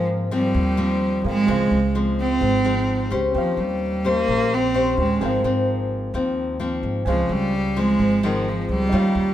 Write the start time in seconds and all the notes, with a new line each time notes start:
Already playing: G#2 F3 A#3 C4 A#4 F5 G#5
0.31 F3 G3 A#3 C4
0.54 D#2 D#3
0.77 F3 A#3 C4
1.23 G#2 C4 G#4 A#4 F5
1.28 G#3
1.47 C#2 C#3 F3 G#3 C4 G#4 C5 F5
1.71 C#2
1.95 F3 G#3 C4
2.20 C4
2.41 G#1 G#2
2.64 F3 G#3 C4
3.10 C#2 C#4 G4 C5
3.32 D#2 D#3 C4 G4
3.36 F3 C5 F5
3.57 D#2 G3
4.05 A#3 C#4 G4 C5
4.28 A#1 A#2
4.54 C4
4.74 C#4 G4 C5
4.97 D#2 G#3 C#4 G4 C5 G5
5.19 G#1 G#2 F3 A#3 C4 G#4 A#4
5.25 F5
5.44 G#1 F3 A#3 C4
6.14 D#2 D#3 F3 A#3 C4
6.60 F3 A#3 C4
6.83 G#1
7.05 C#2 C#3 F3 G#3 C4 C5 F5 G#5
7.29 C#2 G3
7.76 F3 G#3 C4
7.99 G#1 G#2
8.23 D#3 F3 G#3 C4
8.48 F3
8.69 C#2 G3
8.89 D#2 D#3 G3 C#4 D#4 G4
8.94 F4 C#5 F5
9.15 D#2